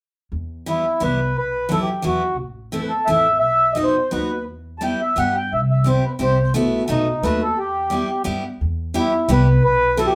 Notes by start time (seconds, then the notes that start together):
0.32 E2
0.66 E3 G3 B3 E4
1.00 C2 E3 G3 B3 E4 B4
1.37 B1 B4
1.69 E3 F#3 B3 E4 A4
1.81 G4
2.02 E2 E3 F#3 B3 E4 F#4
2.38 A1
2.72 E3 A3 C4 E4 A4
2.82 B4
2.89 A4
3.05 A1 E3 A3 C4 E5
3.10 E4
3.39 B1 E5
3.73 F#3 B3 D#4 D#5
3.77 F#4
3.83 C5
4.11 D#2 F#3 B3 D#4 F#4 B4
4.48 E2
4.79 G3 B3 E4 G4 A5
4.84 G5
5.01 E5
5.16 G2 G3 B3 E4 G4 F#5
5.36 G5
5.52 C2 E5
5.71 E5
5.84 G3 C4 E4 G4 C5
6.05 B4
6.19 C2 G3 C4 E4 G4 C5
6.54 B1 A3 B3 E4 F#4
6.88 B1 A3 B3 D#4 F#4
7.22 D#2 A3 B3 D#4 F#4 B4
7.42 A4
7.57 E2 G4
7.90 G3 B3 E4 G4
8.24 G2 G3 B3 E4 G4
8.61 E2
8.94 G3 B3 E4 G4
9.28 C2 G3 B3 E4 G4 B4
9.61 B1 B4
9.97 F#3 B3 E4 F#4 A4
10.06 G4